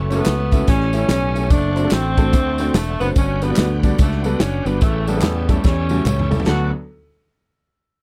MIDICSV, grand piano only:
0, 0, Header, 1, 2, 480
1, 0, Start_track
1, 0, Key_signature, 2, "major"
1, 0, Tempo, 413223
1, 1754, Time_signature, 4, 2, 24, 8
1, 9321, End_track
2, 0, Start_track
2, 0, Title_t, "Grand piano"
2, 0, Program_c, 0, 0
2, 118, Note_on_c, 0, 64, 73
2, 119, Note_on_c, 0, 61, 69
2, 119, Note_on_c, 0, 73, 81
2, 123, Note_on_c, 0, 66, 66
2, 126, Note_on_c, 0, 57, 77
2, 191, Note_off_c, 0, 57, 0
2, 191, Note_off_c, 0, 64, 0
2, 192, Note_off_c, 0, 61, 0
2, 193, Note_off_c, 0, 73, 0
2, 195, Note_off_c, 0, 66, 0
2, 209, Note_on_c, 0, 57, 77
2, 209, Note_on_c, 0, 61, 68
2, 209, Note_on_c, 0, 64, 67
2, 212, Note_on_c, 0, 66, 69
2, 214, Note_on_c, 0, 69, 85
2, 380, Note_off_c, 0, 57, 0
2, 380, Note_off_c, 0, 61, 0
2, 380, Note_off_c, 0, 64, 0
2, 381, Note_off_c, 0, 66, 0
2, 382, Note_off_c, 0, 69, 0
2, 604, Note_on_c, 0, 61, 80
2, 604, Note_on_c, 0, 64, 72
2, 605, Note_on_c, 0, 66, 72
2, 605, Note_on_c, 0, 76, 94
2, 606, Note_on_c, 0, 57, 82
2, 744, Note_off_c, 0, 61, 0
2, 744, Note_off_c, 0, 64, 0
2, 744, Note_off_c, 0, 66, 0
2, 744, Note_off_c, 0, 76, 0
2, 745, Note_off_c, 0, 57, 0
2, 789, Note_on_c, 0, 45, 68
2, 1090, Note_on_c, 0, 61, 78
2, 1090, Note_on_c, 0, 64, 83
2, 1092, Note_on_c, 0, 57, 76
2, 1092, Note_on_c, 0, 67, 72
2, 1093, Note_on_c, 0, 73, 90
2, 1226, Note_off_c, 0, 61, 0
2, 1226, Note_off_c, 0, 64, 0
2, 1227, Note_off_c, 0, 57, 0
2, 1228, Note_off_c, 0, 67, 0
2, 1228, Note_off_c, 0, 73, 0
2, 1522, Note_off_c, 0, 45, 0
2, 1566, Note_on_c, 0, 57, 74
2, 1568, Note_on_c, 0, 73, 82
2, 1570, Note_on_c, 0, 64, 67
2, 1570, Note_on_c, 0, 67, 67
2, 1571, Note_on_c, 0, 61, 66
2, 1705, Note_off_c, 0, 57, 0
2, 1705, Note_off_c, 0, 73, 0
2, 1706, Note_off_c, 0, 64, 0
2, 1707, Note_off_c, 0, 61, 0
2, 1707, Note_off_c, 0, 67, 0
2, 2047, Note_on_c, 0, 57, 73
2, 2047, Note_on_c, 0, 60, 69
2, 2047, Note_on_c, 0, 72, 81
2, 2049, Note_on_c, 0, 66, 77
2, 2052, Note_on_c, 0, 62, 73
2, 2117, Note_off_c, 0, 57, 0
2, 2117, Note_off_c, 0, 60, 0
2, 2117, Note_off_c, 0, 72, 0
2, 2118, Note_off_c, 0, 66, 0
2, 2119, Note_off_c, 0, 62, 0
2, 2143, Note_on_c, 0, 57, 74
2, 2143, Note_on_c, 0, 60, 67
2, 2143, Note_on_c, 0, 69, 90
2, 2146, Note_on_c, 0, 62, 72
2, 2146, Note_on_c, 0, 66, 71
2, 2307, Note_off_c, 0, 57, 0
2, 2307, Note_off_c, 0, 60, 0
2, 2307, Note_off_c, 0, 69, 0
2, 2308, Note_off_c, 0, 62, 0
2, 2308, Note_off_c, 0, 66, 0
2, 2537, Note_on_c, 0, 66, 72
2, 2538, Note_on_c, 0, 62, 81
2, 2539, Note_on_c, 0, 60, 76
2, 2539, Note_on_c, 0, 69, 89
2, 2541, Note_on_c, 0, 57, 84
2, 2670, Note_off_c, 0, 66, 0
2, 2671, Note_off_c, 0, 60, 0
2, 2671, Note_off_c, 0, 62, 0
2, 2671, Note_off_c, 0, 69, 0
2, 2672, Note_off_c, 0, 57, 0
2, 2720, Note_on_c, 0, 50, 69
2, 3020, Note_on_c, 0, 62, 85
2, 3021, Note_on_c, 0, 57, 98
2, 3021, Note_on_c, 0, 60, 84
2, 3021, Note_on_c, 0, 66, 89
2, 3023, Note_on_c, 0, 72, 101
2, 3152, Note_off_c, 0, 57, 0
2, 3152, Note_off_c, 0, 60, 0
2, 3152, Note_off_c, 0, 62, 0
2, 3152, Note_off_c, 0, 66, 0
2, 3153, Note_off_c, 0, 72, 0
2, 3448, Note_off_c, 0, 50, 0
2, 3501, Note_on_c, 0, 57, 73
2, 3501, Note_on_c, 0, 60, 67
2, 3502, Note_on_c, 0, 62, 75
2, 3502, Note_on_c, 0, 72, 86
2, 3505, Note_on_c, 0, 66, 61
2, 3632, Note_off_c, 0, 57, 0
2, 3632, Note_off_c, 0, 60, 0
2, 3633, Note_off_c, 0, 62, 0
2, 3633, Note_off_c, 0, 72, 0
2, 3634, Note_off_c, 0, 66, 0
2, 3692, Note_on_c, 0, 43, 76
2, 3979, Note_on_c, 0, 59, 70
2, 3982, Note_on_c, 0, 62, 73
2, 3983, Note_on_c, 0, 71, 82
2, 3984, Note_on_c, 0, 55, 76
2, 3985, Note_on_c, 0, 66, 68
2, 4043, Note_off_c, 0, 59, 0
2, 4045, Note_off_c, 0, 62, 0
2, 4045, Note_off_c, 0, 71, 0
2, 4046, Note_off_c, 0, 55, 0
2, 4046, Note_off_c, 0, 66, 0
2, 4070, Note_on_c, 0, 66, 71
2, 4072, Note_on_c, 0, 55, 84
2, 4072, Note_on_c, 0, 59, 65
2, 4073, Note_on_c, 0, 74, 82
2, 4074, Note_on_c, 0, 62, 73
2, 4230, Note_off_c, 0, 66, 0
2, 4231, Note_off_c, 0, 55, 0
2, 4231, Note_off_c, 0, 59, 0
2, 4232, Note_off_c, 0, 74, 0
2, 4233, Note_off_c, 0, 62, 0
2, 4414, Note_off_c, 0, 43, 0
2, 4462, Note_on_c, 0, 55, 86
2, 4462, Note_on_c, 0, 74, 99
2, 4464, Note_on_c, 0, 62, 79
2, 4465, Note_on_c, 0, 66, 74
2, 4466, Note_on_c, 0, 59, 85
2, 4593, Note_off_c, 0, 55, 0
2, 4593, Note_off_c, 0, 74, 0
2, 4594, Note_off_c, 0, 62, 0
2, 4594, Note_off_c, 0, 66, 0
2, 4595, Note_off_c, 0, 59, 0
2, 4941, Note_on_c, 0, 66, 86
2, 4944, Note_on_c, 0, 59, 75
2, 4945, Note_on_c, 0, 55, 83
2, 4945, Note_on_c, 0, 62, 75
2, 4946, Note_on_c, 0, 69, 97
2, 5072, Note_off_c, 0, 66, 0
2, 5074, Note_off_c, 0, 55, 0
2, 5074, Note_off_c, 0, 59, 0
2, 5074, Note_off_c, 0, 62, 0
2, 5075, Note_off_c, 0, 69, 0
2, 5418, Note_on_c, 0, 62, 68
2, 5420, Note_on_c, 0, 55, 74
2, 5421, Note_on_c, 0, 59, 65
2, 5423, Note_on_c, 0, 71, 83
2, 5425, Note_on_c, 0, 66, 64
2, 5551, Note_off_c, 0, 62, 0
2, 5552, Note_off_c, 0, 55, 0
2, 5553, Note_off_c, 0, 59, 0
2, 5554, Note_off_c, 0, 66, 0
2, 5554, Note_off_c, 0, 71, 0
2, 5594, Note_on_c, 0, 45, 75
2, 5904, Note_on_c, 0, 55, 79
2, 5904, Note_on_c, 0, 61, 73
2, 5906, Note_on_c, 0, 57, 73
2, 5906, Note_on_c, 0, 69, 85
2, 5907, Note_on_c, 0, 64, 68
2, 5966, Note_off_c, 0, 55, 0
2, 5966, Note_off_c, 0, 61, 0
2, 5967, Note_off_c, 0, 57, 0
2, 5967, Note_off_c, 0, 64, 0
2, 5967, Note_off_c, 0, 69, 0
2, 6001, Note_on_c, 0, 55, 80
2, 6003, Note_on_c, 0, 57, 68
2, 6003, Note_on_c, 0, 61, 63
2, 6005, Note_on_c, 0, 69, 78
2, 6006, Note_on_c, 0, 64, 74
2, 6156, Note_off_c, 0, 55, 0
2, 6157, Note_off_c, 0, 57, 0
2, 6157, Note_off_c, 0, 61, 0
2, 6158, Note_off_c, 0, 69, 0
2, 6159, Note_off_c, 0, 64, 0
2, 6325, Note_off_c, 0, 45, 0
2, 6378, Note_on_c, 0, 64, 75
2, 6379, Note_on_c, 0, 55, 86
2, 6379, Note_on_c, 0, 57, 75
2, 6382, Note_on_c, 0, 61, 79
2, 6384, Note_on_c, 0, 69, 84
2, 6511, Note_off_c, 0, 55, 0
2, 6511, Note_off_c, 0, 57, 0
2, 6511, Note_off_c, 0, 64, 0
2, 6513, Note_off_c, 0, 61, 0
2, 6514, Note_off_c, 0, 69, 0
2, 6860, Note_on_c, 0, 66, 87
2, 6861, Note_on_c, 0, 55, 81
2, 6862, Note_on_c, 0, 57, 81
2, 6863, Note_on_c, 0, 64, 81
2, 6865, Note_on_c, 0, 61, 77
2, 6992, Note_off_c, 0, 66, 0
2, 6993, Note_off_c, 0, 55, 0
2, 6993, Note_off_c, 0, 57, 0
2, 6994, Note_off_c, 0, 64, 0
2, 6995, Note_off_c, 0, 61, 0
2, 7325, Note_on_c, 0, 55, 73
2, 7326, Note_on_c, 0, 69, 78
2, 7329, Note_on_c, 0, 64, 64
2, 7331, Note_on_c, 0, 61, 65
2, 7333, Note_on_c, 0, 57, 61
2, 7465, Note_off_c, 0, 55, 0
2, 7465, Note_off_c, 0, 69, 0
2, 7467, Note_off_c, 0, 64, 0
2, 7468, Note_off_c, 0, 61, 0
2, 7469, Note_off_c, 0, 57, 0
2, 7503, Note_on_c, 0, 62, 89
2, 7505, Note_on_c, 0, 38, 97
2, 7505, Note_on_c, 0, 54, 96
2, 7505, Note_on_c, 0, 69, 108
2, 7509, Note_on_c, 0, 59, 91
2, 7785, Note_off_c, 0, 62, 0
2, 7786, Note_off_c, 0, 54, 0
2, 7787, Note_off_c, 0, 38, 0
2, 7787, Note_off_c, 0, 69, 0
2, 7788, Note_off_c, 0, 59, 0
2, 9321, End_track
0, 0, End_of_file